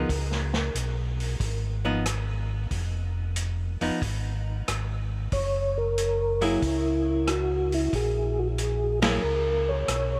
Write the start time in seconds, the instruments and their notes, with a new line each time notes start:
0.09 tonewheel organ C#2, kick, open hi-hat
0.32 snare
0.54 snare
0.75 tonewheel organ B1, closed hi-hat
1.20 open hi-hat
1.40 tonewheel organ G#1, kick, open hi-hat
1.85 hollow-body jazz guitar F3 B3 D#4
2.06 cross-stick, closed hi-hat
2.71 tonewheel organ F1, kick, open hi-hat
3.36 closed hi-hat
3.81 tonewheel organ F1, hollow-body jazz guitar F3 B3 D#4, open hi-hat
4.02 tonewheel organ G#1, kick, open hi-hat
4.68 tonewheel organ G#1, cross-stick, closed hi-hat
5.32 tonewheel organ F#1 C#5, kick, open hi-hat
5.78 tonewheel organ A#4
5.98 closed hi-hat
6.41 hollow-body jazz guitar F#3 A#3 E4 G#4, tonewheel organ E4, open hi-hat
6.62 tonewheel organ C#2, kick, open hi-hat
7.27 tonewheel organ F#4, cross-stick, closed hi-hat
7.72 tonewheel organ E4, open hi-hat
7.93 tonewheel organ A#1 G#4, kick, open hi-hat
8.39 tonewheel organ F#4
8.58 tonewheel organ G#4, closed hi-hat
9.02 hollow-body jazz guitar F#3 A#3 E4 G#4, tonewheel organ A#4, snare, ride
9.23 tonewheel organ C#2
9.69 tonewheel organ C#5
9.88 tonewheel organ B1, cross-stick, closed hi-hat